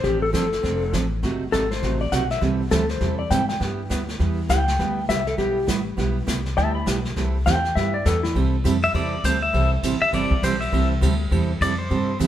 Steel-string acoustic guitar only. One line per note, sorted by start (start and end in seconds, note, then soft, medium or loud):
0.03 0.23 F3 medium
0.03 0.24 C4 medium
0.03 0.24 D4 medium
0.03 0.24 A4 medium
0.33 0.44 F3 medium
0.33 0.44 C4 medium
0.33 0.45 D4 medium
0.33 0.45 A4 medium
0.62 0.83 F3 medium
0.62 0.83 C4 medium
0.62 0.83 D4 medium
0.62 0.83 A4 medium
0.92 1.04 F3 medium
0.92 1.04 C4 medium
0.92 1.04 D4 medium
0.92 1.04 A4 medium
1.23 1.42 C3 medium
1.23 1.43 F#3 medium
1.23 1.43 A3 medium
1.23 1.43 D#4 medium
1.23 1.43 F#4 medium
1.52 1.63 C3 medium
1.52 1.63 F#3 medium
1.52 1.64 A3 medium
1.52 1.64 D#4 medium
1.52 1.64 F#4 medium
1.83 2.02 C3 medium
1.83 2.02 F#3 medium
1.83 2.02 A3 medium
1.83 2.02 D#4 medium
1.83 2.03 F#4 medium
2.12 2.23 C3 medium
2.12 2.23 F#3 medium
2.12 2.23 A3 medium
2.12 2.23 D#4 medium
2.12 2.23 F#4 medium
2.41 2.61 C3 medium
2.41 2.61 E3 medium
2.41 2.61 G3 medium
2.41 2.61 C4 medium
2.41 2.61 E4 medium
2.41 2.61 A4 medium
2.71 2.82 C3 medium
2.71 2.82 E3 medium
2.71 2.82 G3 medium
2.71 2.82 C4 medium
2.71 2.82 E4 medium
2.71 2.82 A4 medium
3.00 3.20 C3 medium
3.00 3.20 E3 medium
3.00 3.20 G3 medium
3.00 3.21 C4 medium
3.00 3.21 E4 medium
3.00 3.21 A4 medium
3.30 3.41 C3 medium
3.30 3.41 E3 medium
3.30 3.42 G3 medium
3.30 3.42 C4 medium
3.30 3.42 E4 medium
3.30 3.42 A4 medium
3.60 3.80 G3 medium
3.60 3.80 B3 medium
3.60 3.80 E4 medium
3.60 3.80 G4 medium
3.89 4.01 G3 medium
3.89 4.01 B3 medium
3.89 4.01 E4 medium
3.89 4.01 G4 medium
4.19 4.39 G3 medium
4.19 4.39 B3 medium
4.19 4.39 E4 medium
4.19 4.40 G4 medium
4.49 4.60 G3 medium
4.49 4.60 B3 medium
4.49 4.60 E4 medium
4.49 4.60 G4 medium
4.79 4.99 G3 medium
4.79 4.99 B3 medium
4.79 4.99 E4 medium
4.79 4.99 G4 medium
5.09 5.20 G3 medium
5.09 5.20 B3 medium
5.09 5.20 E4 medium
5.09 5.20 G4 medium
5.37 5.58 G3 medium
5.37 5.58 B3 medium
5.37 5.58 E4 medium
5.37 5.58 G4 medium
5.67 5.78 G3 medium
5.67 5.79 B3 medium
5.67 5.79 E4 medium
5.67 5.79 G4 medium
5.97 6.17 G3 medium
5.97 6.17 B3 medium
5.97 6.17 E4 medium
5.97 6.18 G4 medium
6.27 6.38 G3 medium
6.27 6.38 B3 medium
6.27 6.38 E4 medium
6.27 6.38 G4 medium
6.57 6.77 G3 medium
6.57 6.77 B3 medium
6.57 6.77 E4 medium
6.57 6.77 G4 medium
6.86 6.97 G3 medium
6.86 6.97 B3 medium
6.86 6.97 E4 medium
6.86 6.98 G4 medium
7.16 7.36 C3 medium
7.16 7.36 E3 medium
7.16 7.36 G3 medium
7.16 7.36 C4 medium
7.16 7.36 E4 medium
7.16 7.36 A4 medium
7.46 7.57 C3 medium
7.46 7.57 E3 medium
7.46 7.57 G3 medium
7.46 7.57 C4 medium
7.46 7.57 E4 medium
7.46 7.57 A4 medium
7.76 7.95 G3 medium
7.76 7.96 B3 medium
7.76 7.96 E4 medium
7.76 7.96 G4 medium
8.05 8.16 G3 medium
8.05 8.17 B3 medium
8.05 8.16 E4 medium
8.05 8.17 G4 medium
8.35 8.55 C3 medium
8.35 8.55 E3 medium
8.35 8.55 G3 medium
8.35 8.55 C4 medium
8.35 8.55 E4 medium
8.35 8.55 A4 medium
8.64 8.75 C3 medium
8.64 8.75 E3 medium
8.64 8.75 G3 medium
8.64 8.75 C4 medium
8.64 8.76 E4 medium
8.64 8.76 A4 medium
8.94 9.14 C3 medium
8.94 9.14 E3 medium
8.94 9.14 G3 medium
8.94 9.14 C4 medium
8.94 9.14 E4 medium
8.94 9.14 A4 medium
9.24 9.35 C3 medium
9.24 9.35 E3 medium
9.24 9.35 G3 medium
9.24 9.35 C4 medium
9.24 9.35 E4 medium
9.24 9.35 A4 medium
9.53 9.73 C3 medium
9.53 9.73 E3 medium
9.53 9.73 G3 medium
9.53 9.73 C4 medium
9.53 9.73 E4 medium
9.53 9.73 A4 medium
9.83 9.94 C3 medium
9.83 9.94 E3 medium
9.83 9.94 G3 medium
9.83 9.94 C4 medium
9.83 9.94 E4 medium
9.83 9.95 A4 medium
10.13 10.32 C3 medium
10.13 10.32 E3 medium
10.13 10.33 G3 medium
10.13 10.33 C4 medium
10.13 10.33 E4 medium
10.13 10.33 A4 medium
10.43 10.53 C3 medium
10.43 10.54 E3 medium
10.43 10.54 G3 medium
10.43 10.54 C4 medium
10.43 10.54 E4 medium
10.43 10.54 A4 medium
10.72 10.92 C3 medium
10.72 10.92 E3 medium
10.72 10.92 G3 medium
10.72 10.92 C4 medium
10.72 10.92 E4 medium
10.72 10.92 A4 medium
11.01 11.12 C3 medium
11.01 11.12 E3 medium
11.01 11.13 G3 medium
11.01 11.13 C4 medium
11.01 11.13 E4 medium
11.01 11.13 A4 medium
11.31 11.51 C3 medium
11.31 11.51 E3 medium
11.31 11.51 G3 medium
11.31 11.51 C4 medium
11.31 11.51 E4 medium
11.31 11.51 A4 medium
11.61 11.72 C3 medium
11.61 11.72 E3 medium
11.61 11.72 G3 medium
11.61 11.72 C4 medium
11.61 11.72 E4 medium
11.61 11.72 A4 medium
11.90 12.10 C3 medium
11.90 12.10 E3 medium
11.90 12.10 G3 medium
11.90 12.10 C4 medium
11.90 12.10 E4 medium
11.90 12.10 A4 medium
12.19 12.27 C3 medium
12.19 12.27 E3 medium
12.19 12.27 G3 medium
12.19 12.27 C4 medium
12.19 12.27 E4 medium
12.19 12.27 A4 medium